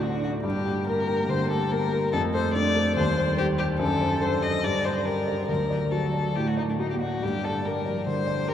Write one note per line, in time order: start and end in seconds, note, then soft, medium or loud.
0.00 0.47 D2 medium
0.00 0.47 A2 soft
0.00 0.47 A3 soft
0.00 0.15 C4 soft
0.00 0.22 D4 soft
0.00 0.46 F#4 soft
0.00 0.23 F#4 medium
0.13 0.23 D4 soft
0.22 0.44 D4 soft
0.22 0.31 F#4 soft
0.43 1.26 G2 medium
0.43 2.09 A#3 medium
0.43 0.86 G4 medium
0.65 0.99 G4 soft
0.86 1.20 A#4 soft
0.86 1.31 A#4 medium
1.08 1.42 G4 soft
1.29 1.63 D3 soft
1.29 1.50 C5 medium
1.50 1.84 G4 medium
1.50 1.73 A4 medium
1.71 2.12 A#4 medium
1.71 2.05 A#4 medium
1.92 2.13 G4 soft
2.13 2.95 F2 medium
2.13 2.93 A3 medium
2.13 2.21 A4 medium
2.34 2.68 A4 soft
2.34 2.53 C5 medium
2.54 2.89 D4 soft
2.54 2.95 D5 medium
2.76 2.97 A4 soft
2.96 3.77 D#2 medium
2.96 3.76 G3 medium
2.96 3.37 C5 medium
3.17 3.51 C5 soft
3.38 3.71 G4 medium
3.38 3.46 G4 medium
3.58 3.66 G4 medium
3.58 3.80 C5 soft
3.79 4.61 F#2 medium
3.79 4.19 D3 medium
3.79 4.23 A4 medium
4.00 4.34 C5 soft
4.21 4.62 D3 medium
4.21 4.55 A4 soft
4.21 4.44 C5 medium
4.42 4.64 C5 soft
4.42 4.65 D#5 medium
4.63 5.46 G2 medium
4.63 5.05 D3 medium
4.63 4.86 D5 medium
4.85 5.07 C5 medium
4.85 5.19 D5 soft
5.05 5.50 D3 soft
5.05 5.40 G4 soft
5.05 5.48 A#4 medium
5.27 5.49 D5 soft
5.48 6.33 D2 soft
5.48 5.92 F#3 soft
5.48 5.93 A#4 medium
5.70 6.05 D5 soft
5.91 6.37 F#3 soft
5.91 6.27 F#4 soft
5.91 6.37 A4 medium
6.14 6.49 D5 soft
6.35 6.70 A2 soft
6.35 6.79 A3 medium
6.35 6.49 G4 medium
6.47 6.57 F#4 soft
6.57 6.62 D#4 medium
6.57 6.92 D5 soft
6.69 6.73 D4 soft
6.79 7.22 A#3 soft
6.79 6.90 D#4 medium
6.79 7.14 F#4 soft
6.90 6.95 G4 soft
7.01 7.24 F#4 medium
7.01 7.22 D5 soft
7.22 8.04 G2 soft
7.22 7.67 D3 soft
7.22 7.45 G4 medium
7.44 7.67 A4 medium
7.44 7.78 D5 soft
7.65 7.88 G3 medium
7.65 7.98 G4 soft
7.65 8.06 A#4 medium
7.85 8.09 F3 soft
7.85 8.19 D5 soft
8.07 8.40 D3 soft
8.07 8.54 G3 medium
8.07 8.50 C5 medium
8.27 8.54 D5 soft
8.48 8.54 G4 soft
8.48 8.54 A#4 medium